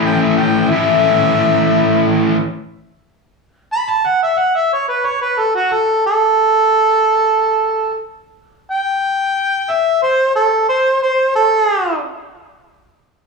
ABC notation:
X:1
M:4/4
L:1/16
Q:1/4=90
K:Amix
V:1 name="Harmonica"
g e g2 e8 z4 | z6 b a f e f e c B c B | A F A2 A12 | z4 g6 e2 =c2 A2 |
=c2 c2 A4 z8 |]
V:2 name="Distorted electric guitar"
[A,,E,A,CE]4 [A,,E,A,CE]8- [A,,E,A,CE]2 z2 | z16 | z16 | z16 |
z16 |]